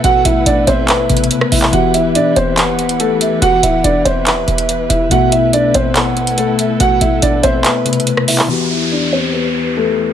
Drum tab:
HH |x-----x-----x-----x-----x-----x-x-x-x-----o-----|x-----x-----x-----x-----x-----x--x--x-----x-----|x-----x-----x-----x-----x-----x--x--x-----x-----|x-----x-----x-----x-----x-----x--x--x-----x-----|
CP |------------------------x--------------------x--|------------------------x-----------------------|------------------------x-----------------------|------------------------x-----------------------|
SD |---------------------------------------r--------|------------------------------------------------|------------------------------------------------|------------------------------------------------|

HH |x-----x-----x-----x-----x-----x-x-x-x-----o-----|------------------------------------------------|
CP |------------------------x--------------------x--|------------------------------------------------|
SD |---------------------------------------r--------|------------------------------------------------|